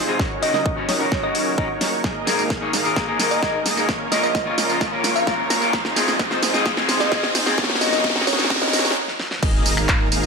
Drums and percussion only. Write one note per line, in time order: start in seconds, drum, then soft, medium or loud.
0.19 kick loud
0.19 snare medium
0.43 open hi-hat loud
0.54 snare medium
0.66 kick loud
0.89 snare medium
0.89 open hi-hat medium
1.12 kick loud
1.12 snare medium
1.35 open hi-hat loud
1.58 kick loud
1.81 snare medium
1.81 open hi-hat medium
2.04 kick loud
2.04 snare medium
2.04 tambourine soft
2.27 snare medium
2.27 open hi-hat loud
2.27 tambourine medium
2.39 tambourine soft
2.50 kick loud
2.50 snare medium
2.50 tambourine soft
2.73 snare medium
2.73 open hi-hat medium
2.73 tambourine medium
2.85 tambourine soft
2.96 kick loud
2.96 snare medium
2.96 tambourine soft
3.19 snare medium
3.19 open hi-hat loud
3.19 tambourine medium
3.31 tambourine soft
3.43 kick loud
3.43 snare medium
3.43 tambourine soft
3.66 snare medium
3.66 open hi-hat medium
3.66 tambourine medium
3.77 tambourine soft
3.89 kick loud
3.89 snare medium
3.89 tambourine soft
4.12 snare medium
4.12 open hi-hat loud
4.12 tambourine medium
4.23 tambourine soft
4.35 kick loud
4.35 snare medium
4.35 tambourine soft
4.58 snare medium
4.58 open hi-hat medium
4.58 tambourine medium
4.69 tambourine soft
4.81 kick loud
4.81 snare medium
4.81 tambourine soft
5.04 snare medium
5.04 open hi-hat loud
5.04 tambourine medium
5.16 tambourine soft
5.27 kick loud
5.27 snare medium
5.27 tambourine soft
5.50 snare loud
5.50 open hi-hat medium
5.50 tambourine medium
5.62 tambourine soft
5.73 kick loud
5.73 snare medium
5.73 tambourine soft
5.85 snare medium
5.96 snare medium
5.96 open hi-hat loud
5.96 tambourine medium
6.08 snare medium
6.08 tambourine soft
6.19 kick loud
6.19 snare medium
6.19 tambourine soft
6.31 snare medium
6.43 snare loud
6.43 open hi-hat medium
6.43 tambourine medium
6.54 snare medium
6.54 tambourine soft
6.66 kick loud
6.66 snare loud
6.66 tambourine soft
6.77 snare medium
6.89 snare loud
6.89 open hi-hat loud
6.89 tambourine medium
7.00 snare medium
7.00 tambourine soft
7.12 kick loud
7.12 snare loud
7.12 tambourine soft
7.23 snare medium
7.35 snare loud
7.35 open hi-hat medium
7.35 tambourine medium
7.46 snare medium
7.46 tambourine soft
7.58 kick loud
7.58 snare loud
7.58 tambourine soft
7.64 snare medium
7.70 snare medium
7.75 snare medium
7.81 snare loud
7.81 open hi-hat loud
7.81 tambourine medium
7.87 snare medium
7.93 snare medium
7.93 tambourine soft
7.98 snare medium
8.04 kick loud
8.04 snare loud
8.04 tambourine soft
8.10 snare medium
8.16 snare medium
8.21 snare medium
8.27 snare loud
8.27 open hi-hat medium
8.27 tambourine medium
8.33 snare medium
8.39 snare medium
8.39 tambourine soft
8.44 snare medium
8.50 kick loud
8.50 snare loud
8.50 tambourine soft
8.56 snare loud
8.62 snare loud
8.68 snare medium
8.73 snare loud
8.73 open hi-hat loud
8.73 tambourine medium
8.79 snare loud
8.85 snare medium
8.85 tambourine soft
8.91 snare medium
9.08 snare medium
9.20 snare medium
9.31 snare medium
9.43 kick loud
9.43 crash loud
9.43 tambourine soft
9.66 open hi-hat loud
9.66 tambourine medium
9.77 finger snap medium
9.77 tambourine soft
9.89 kick loud
9.89 clap loud
9.89 tambourine soft
10.12 open hi-hat loud
10.12 tambourine medium